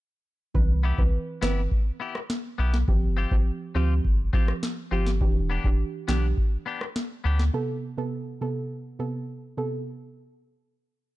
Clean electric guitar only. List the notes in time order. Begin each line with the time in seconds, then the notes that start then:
0.83 B3 E4 G4
1.42 B3 E4 G4
2.00 B3 E4 G4
2.58 B3 E4 G4
3.17 C4 F4 G4
3.75 C4 F4 G4
4.33 C4 F4 G4
4.91 C4 F4 G4
5.50 B3 D4 G4
6.08 B3 D4 G4
6.66 B3 D4 G4
7.24 B3 D4 G4